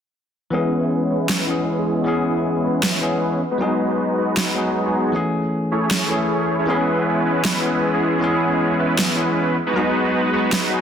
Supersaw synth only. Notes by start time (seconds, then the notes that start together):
0.52 G#3 B3 C#4 E4 B4
1.10 G#3 B3 C#4 E4 B4
1.59 G#3 B3 C#4 E4 B4
1.78 G#3 B3 C#4 E4 G#4
2.64 G#3 B3 C#4 E4 B4
3.51 G#3 B3 D#4 F#4 B4
3.60 G#3 B3 D#4 F#4 B4
4.18 G#3 B3 D#4 F#4 B4
4.67 G#3 B3 D#4 F#4 B4
4.86 G#3 B3 D#4 F#4 G#4
5.72 A3 C#4 E4 G#4 C#5
6.59 A3 C#4 E4 G#4 C#5
6.68 G#3 B3 C#4 E4 B4
7.25 G#3 B3 C#4 E4 B4
7.74 G#3 B3 C#4 E4 B4
7.93 G#3 B3 C#4 E4 G#4
8.79 G#3 B3 C#4 E4 B4
9.66 G#3 B3 D#4 F#4 B4
9.75 G#3 B3 D#4 F#4 B4
10.33 G#3 B3 D#4 F#4 B4